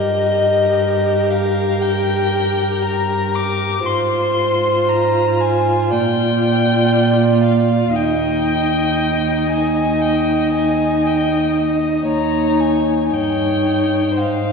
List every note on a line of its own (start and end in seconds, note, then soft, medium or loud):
0.00 3.83 G2 soft
0.00 3.86 G4 soft
0.00 3.83 A#4 soft
0.00 1.32 D#5 medium
1.30 1.83 F5 medium
1.81 2.84 G5 medium
2.85 3.37 A#5 medium
3.35 3.87 D6 medium
3.86 5.93 G#2 soft
3.86 7.92 F4 soft
3.86 5.92 C5 soft
3.86 4.90 C6 medium
4.89 5.42 A#5 medium
5.41 5.92 G#5 medium
5.91 7.95 A#2 soft
5.91 7.96 D5 soft
5.91 7.43 G5 medium
7.44 7.97 F5 medium
7.95 12.04 D#2 soft
7.95 12.04 D#4 soft
7.95 12.05 D#5 soft
7.95 9.50 G5 medium
9.50 10.03 G#5 soft
10.01 10.53 G5 medium
10.53 11.08 G#5 soft
11.06 11.58 G5 soft
12.08 13.12 D#2 soft
12.08 13.07 D#4 soft
12.08 13.07 C#5 soft
12.08 12.62 A#5 medium
12.60 13.15 G#5 soft
13.11 14.19 G2 soft
13.11 14.16 D#4 soft
13.11 14.15 C#5 soft
13.11 14.21 G5 medium
14.16 14.52 G#2 soft
14.16 14.52 D#4 soft
14.16 14.52 C5 soft
14.16 14.52 F5 soft